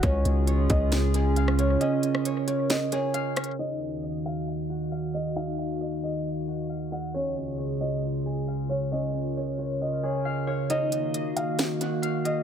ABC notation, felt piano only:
X:1
M:4/4
L:1/8
Q:1/4=135
K:Ebm
V:1 name="Felt piano"
d3 e z3 d | e3 d e d3 | e3 f z3 e | f3 e z3 g |
d3 e z3 d | e3 d e d3 | e3 f z3 e |]